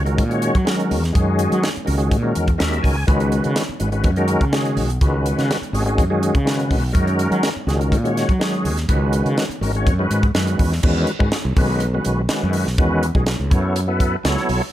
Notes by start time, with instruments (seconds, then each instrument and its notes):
Already playing: fretless electric bass C#2
0.05 tonewheel organ D#3 G#3 C#4 F#4 A#4, closed hi-hat
0.18 fretless electric bass A#2, kick, closed hi-hat
0.29 tonewheel organ D#3 G#3 C#4 F#4 C#5, closed hi-hat
0.42 closed hi-hat
0.55 fretless electric bass F#3, kick, closed hi-hat
0.65 tonewheel organ D#3 G#3 C#4 F#4 A#4, snare, closed hi-hat
0.80 closed hi-hat
0.91 fretless electric bass E2, open hi-hat
1.04 snare, closed hi-hat
1.12 fretless electric bass F#2, tonewheel organ D#3 G#3 C#4 F#4 G#4, kick, closed hi-hat
1.39 closed hi-hat
1.52 fretless electric bass F#3, closed hi-hat
1.63 snare, closed hi-hat
1.76 muted fretless electric bass stroke, closed hi-hat
1.85 fretless electric bass C#2, tonewheel organ D#3 G#3 C#4 F#4 A#4, open hi-hat
1.97 tonewheel organ D#3 G#3 C#4 F#4 G#4, closed hi-hat
2.11 fretless electric bass A#2, kick, closed hi-hat
2.22 tonewheel organ D#3 G#3 C#4 F#4 A#4
2.35 fretless electric bass E2, closed hi-hat
2.48 kick, closed hi-hat
2.58 fretless electric bass D#2, tonewheel organ D#3 G#3 C#4 F#4 A#4 E5, snare, closed hi-hat
2.73 closed hi-hat
2.83 fretless electric bass C#2, tonewheel organ G#5, kick, open hi-hat
3.07 fretless electric bass C#2, tonewheel organ D#3 G#3 C#4 F#4 B4, kick, closed hi-hat
3.20 closed hi-hat
3.32 closed hi-hat
3.44 fretless electric bass C#3, closed hi-hat
3.56 snare, closed hi-hat
3.69 muted fretless electric bass stroke
3.80 fretless electric bass G#1, tonewheel organ D#3 G#3 C#4 F#4 B4, closed hi-hat
3.92 tonewheel organ D#3 G#3 C#4 F#4 B4, closed hi-hat
4.04 fretless electric bass F#2, kick, closed hi-hat
4.16 tonewheel organ D#3 G#3 C#4 F#4 A#4, closed hi-hat
4.28 closed hi-hat
4.41 fretless electric bass C#3, kick, closed hi-hat
4.52 tonewheel organ D#3 G#3 C#4 F#4 G#4, snare, closed hi-hat
4.65 closed hi-hat
4.77 fretless electric bass B1, open hi-hat
4.90 closed hi-hat
5.01 fretless electric bass C#2, tonewheel organ D#3 G#3 C#4 F#4 B4, kick, closed hi-hat
5.26 closed hi-hat
5.38 fretless electric bass C#3, snare, closed hi-hat
5.51 snare, closed hi-hat
5.62 muted fretless electric bass stroke, closed hi-hat
5.73 fretless electric bass G#1, tonewheel organ D#3 G#3 C#4 F#4 G#4, open hi-hat
5.85 tonewheel organ D#3 G#3 C#4 F#4 G#4, closed hi-hat
5.98 fretless electric bass F#2, kick, closed hi-hat
6.10 tonewheel organ D#3 G#3 C#4 F#4 G#4
6.23 closed hi-hat
6.35 fretless electric bass C#3, kick, closed hi-hat
6.45 tonewheel organ D#3 G#3 C#4 F#4 B4, snare, closed hi-hat
6.59 closed hi-hat
6.71 fretless electric bass B1, kick, open hi-hat
6.92 fretless electric bass F#2, tonewheel organ D#3 G#3 C#4 F#4 A#4, kick, closed hi-hat
7.07 closed hi-hat
7.19 closed hi-hat
7.31 fretless electric bass F#3, closed hi-hat
7.43 snare, closed hi-hat
7.56 muted fretless electric bass stroke
7.67 fretless electric bass C#2, tonewheel organ D#3 G#3 C#4 F#4 G#4, snare, closed hi-hat
7.78 tonewheel organ D#3 G#3 C#4 F#4 A#4, closed hi-hat
7.92 fretless electric bass A#2, kick, closed hi-hat
8.03 tonewheel organ D#3 G#3 C#4 F#4 C#5, closed hi-hat
8.17 snare, closed hi-hat
8.29 fretless electric bass F#3, kick, closed hi-hat
8.39 tonewheel organ D#3 G#3 C#4 F#4 G#4, snare, closed hi-hat
8.53 closed hi-hat
8.65 fretless electric bass D#2, open hi-hat
8.77 snare, closed hi-hat
8.88 fretless electric bass C#2, tonewheel organ D#3 G#3 C#4 F#4 B4, kick, closed hi-hat
9.13 closed hi-hat
9.25 fretless electric bass C#3, closed hi-hat
9.38 snare, closed hi-hat
9.49 muted fretless electric bass stroke, closed hi-hat
9.61 fretless electric bass G#1, tonewheel organ D#3 G#3 C#4 F#4 A#4, open hi-hat
9.75 tonewheel organ D#3 G#3 C#4 F#4 C#5, closed hi-hat
9.87 fretless electric bass F#2, kick, closed hi-hat
9.99 tonewheel organ D#3 G#3 C#4 F#4 B4
10.11 fretless electric bass G#2, closed hi-hat
10.23 kick, closed hi-hat
10.35 fretless electric bass F#2, tonewheel organ D#3 G#3 C#4 F#4 B4, snare, closed hi-hat
10.47 closed hi-hat
10.59 fretless electric bass E2, kick, open hi-hat
10.72 snare
10.82 fretless electric bass E2, tonewheel organ D#3 G#3 C#4 F#4 B4, kick, crash
11.07 closed hi-hat
11.19 fretless electric bass G#2, tonewheel organ D#3 G#3 C#4 F#4 B4, kick
11.32 tonewheel organ F#4 G#4, snare, closed hi-hat
11.45 fretless electric bass C2
11.56 fretless electric bass B1, tonewheel organ D#3 G#3 C#4 F#4 B4, kick, open hi-hat
11.80 closed hi-hat
11.94 tonewheel organ D#3 G#3 C#4 F#4 B4
12.05 fretless electric bass B1, closed hi-hat
12.29 tonewheel organ D#3 G#3 C#4 F#4 B4, snare, closed hi-hat
12.43 fretless electric bass F#2
12.53 open hi-hat
12.67 fretless electric bass B1, snare
12.78 fretless electric bass E2, tonewheel organ D#3 G#3 C#4 F#4 B4, kick, closed hi-hat
13.03 closed hi-hat
13.15 fretless electric bass B1, tonewheel organ D#3 G#3 C#4 F#4 G#4, kick
13.26 tonewheel organ F#4 B4, snare, closed hi-hat
13.40 fretless electric bass C#2
13.50 fretless electric bass F#2, tonewheel organ F#3 B3 E4 A4 C#5, kick, closed hi-hat
13.76 closed hi-hat
13.87 tonewheel organ F#3 B3 E4 A4 B4
14.00 kick, closed hi-hat
14.23 fretless electric bass C#2, tonewheel organ F#3 B3 E4 A4 C#5, snare, closed hi-hat
14.37 snare
14.49 fretless electric bass B1, open hi-hat